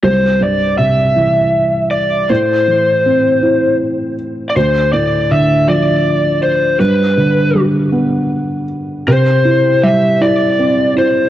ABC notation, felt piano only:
X:1
M:6/8
L:1/8
Q:3/8=53
K:C
V:1 name="Felt piano" clef=bass
C,, G,, C, E,3 | A,, E, C E3 | D,, A,, D, F,3 | G,, D, G, B,3 |
C, E G, E C E |]